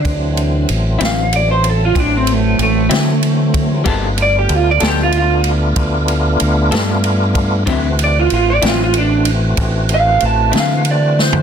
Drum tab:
RD |x-x-x-x-x-x-x-x-x-x-x-x-|x-x-x-x-x-x-x-x-x-x-x-x-|x-x-x-x-x-x-x-x-x-x-x---|
SD |------o-----------o-----|------o-----------o-----|------o-----------o---o-|
FT |------------------------|------------------------|-----------------------o|
BD |o-----------o---------o-|o-----------o---------o-|o-----------o-----------|